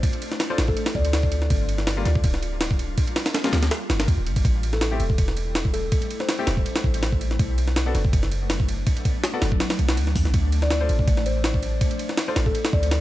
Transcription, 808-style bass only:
0, 0, Header, 1, 2, 480
1, 0, Start_track
1, 0, Tempo, 368098
1, 43, Time_signature, 4, 2, 24, 8
1, 16960, End_track
2, 0, Start_track
2, 0, Title_t, "808-style bass"
2, 0, Program_c, 0, 38
2, 761, Note_on_c, 0, 33, 95
2, 980, Note_off_c, 0, 33, 0
2, 1238, Note_on_c, 0, 38, 88
2, 1943, Note_off_c, 0, 38, 0
2, 1963, Note_on_c, 0, 31, 103
2, 2665, Note_off_c, 0, 31, 0
2, 2683, Note_on_c, 0, 38, 95
2, 2901, Note_off_c, 0, 38, 0
2, 2920, Note_on_c, 0, 26, 95
2, 3864, Note_off_c, 0, 26, 0
2, 4600, Note_on_c, 0, 38, 95
2, 4819, Note_off_c, 0, 38, 0
2, 5082, Note_on_c, 0, 31, 86
2, 5314, Note_off_c, 0, 31, 0
2, 5322, Note_on_c, 0, 38, 81
2, 5438, Note_off_c, 0, 38, 0
2, 5451, Note_on_c, 0, 26, 103
2, 5563, Note_on_c, 0, 31, 102
2, 5583, Note_off_c, 0, 26, 0
2, 5781, Note_off_c, 0, 31, 0
2, 5801, Note_on_c, 0, 33, 100
2, 6504, Note_off_c, 0, 33, 0
2, 6519, Note_on_c, 0, 28, 94
2, 6739, Note_off_c, 0, 28, 0
2, 6761, Note_on_c, 0, 28, 94
2, 7704, Note_off_c, 0, 28, 0
2, 8442, Note_on_c, 0, 28, 96
2, 8660, Note_off_c, 0, 28, 0
2, 8922, Note_on_c, 0, 33, 89
2, 9625, Note_off_c, 0, 33, 0
2, 9643, Note_on_c, 0, 35, 105
2, 10345, Note_off_c, 0, 35, 0
2, 10363, Note_on_c, 0, 30, 96
2, 10580, Note_off_c, 0, 30, 0
2, 10604, Note_on_c, 0, 30, 96
2, 11546, Note_off_c, 0, 30, 0
2, 12285, Note_on_c, 0, 30, 92
2, 12502, Note_off_c, 0, 30, 0
2, 12768, Note_on_c, 0, 35, 85
2, 13008, Note_on_c, 0, 38, 82
2, 13028, Note_off_c, 0, 35, 0
2, 13223, Note_off_c, 0, 38, 0
2, 13244, Note_on_c, 0, 40, 82
2, 13372, Note_on_c, 0, 35, 101
2, 13391, Note_off_c, 0, 40, 0
2, 13472, Note_off_c, 0, 35, 0
2, 13482, Note_on_c, 0, 38, 101
2, 14185, Note_off_c, 0, 38, 0
2, 14207, Note_on_c, 0, 33, 94
2, 14423, Note_off_c, 0, 33, 0
2, 14444, Note_on_c, 0, 33, 98
2, 15385, Note_off_c, 0, 33, 0
2, 16124, Note_on_c, 0, 33, 96
2, 16341, Note_off_c, 0, 33, 0
2, 16602, Note_on_c, 0, 38, 87
2, 16960, Note_off_c, 0, 38, 0
2, 16960, End_track
0, 0, End_of_file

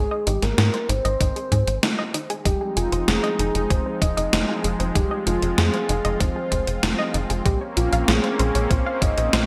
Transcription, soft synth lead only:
0, 0, Header, 1, 2, 480
1, 0, Start_track
1, 0, Key_signature, -4, "minor"
1, 0, Tempo, 625000
1, 1886, Time_signature, 4, 2, 24, 8
1, 7266, End_track
2, 0, Start_track
2, 0, Title_t, "Soft synth lead"
2, 0, Program_c, 0, 80
2, 0, Note_on_c, 0, 68, 96
2, 205, Note_on_c, 0, 67, 90
2, 216, Note_off_c, 0, 68, 0
2, 324, Note_on_c, 0, 70, 102
2, 335, Note_off_c, 0, 67, 0
2, 682, Note_on_c, 0, 72, 117
2, 694, Note_off_c, 0, 70, 0
2, 1644, Note_off_c, 0, 72, 0
2, 1886, Note_on_c, 0, 67, 92
2, 2127, Note_on_c, 0, 65, 84
2, 2138, Note_off_c, 0, 67, 0
2, 2365, Note_on_c, 0, 68, 96
2, 2377, Note_off_c, 0, 65, 0
2, 2601, Note_off_c, 0, 68, 0
2, 2606, Note_on_c, 0, 68, 94
2, 2846, Note_on_c, 0, 72, 111
2, 2857, Note_off_c, 0, 68, 0
2, 3081, Note_off_c, 0, 72, 0
2, 3086, Note_on_c, 0, 75, 110
2, 3535, Note_off_c, 0, 75, 0
2, 3804, Note_on_c, 0, 67, 92
2, 4028, Note_off_c, 0, 67, 0
2, 4046, Note_on_c, 0, 65, 83
2, 4269, Note_off_c, 0, 65, 0
2, 4284, Note_on_c, 0, 68, 104
2, 4762, Note_on_c, 0, 72, 110
2, 4774, Note_off_c, 0, 68, 0
2, 5484, Note_off_c, 0, 72, 0
2, 5724, Note_on_c, 0, 67, 90
2, 5831, Note_off_c, 0, 67, 0
2, 5965, Note_on_c, 0, 65, 85
2, 6204, Note_on_c, 0, 68, 96
2, 6215, Note_off_c, 0, 65, 0
2, 6439, Note_off_c, 0, 68, 0
2, 6443, Note_on_c, 0, 68, 95
2, 6683, Note_on_c, 0, 72, 108
2, 6694, Note_off_c, 0, 68, 0
2, 6924, Note_on_c, 0, 75, 113
2, 6936, Note_off_c, 0, 72, 0
2, 7266, Note_off_c, 0, 75, 0
2, 7266, End_track
0, 0, End_of_file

